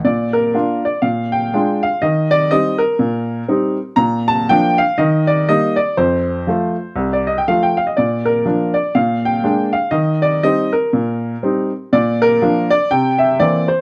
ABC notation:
X:1
M:4/4
L:1/16
Q:"Swing" 1/4=122
K:Bb
V:1 name="Upright piano"
d2 B4 d2 f2 g4 f2 | e2 d2 e2 B8 z2 | b2 a2 g2 f2 e2 d2 e2 d2 | c8- c d e g f g f e |
d2 B4 d2 f2 g4 f2 | e2 d2 e2 B8 z2 | d2 B4 d2 g2 =e2 d2 c2 |]
V:2 name="Upright piano"
B,,4 [B,DF]4 B,,4 [_A,DF]4 | E,4 [G,CE]4 B,,4 [G,CE]4 | B,,4 [F,B,D]4 E,4 [G,B,E]4 | F,,4 [F,A,F]4 C,,4 [F,A,F]4 |
B,,4 [F,B,D]4 B,,4 [_A,B,D]4 | E,4 [G,CE]4 B,,4 [G,CE]4 | B,,4 [F,B,D]4 C,4 [=E,B,C]4 |]